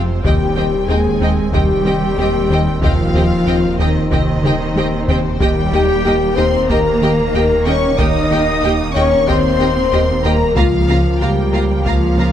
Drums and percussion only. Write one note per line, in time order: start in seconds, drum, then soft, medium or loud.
0.24 taiko loud
1.53 taiko medium
2.82 taiko loud
4.12 taiko medium
4.43 taiko mid medium
4.76 taiko high medium
5.08 taiko low medium
5.40 taiko loud
6.70 taiko medium
7.99 taiko loud
9.28 taiko medium
10.57 taiko loud
11.86 taiko medium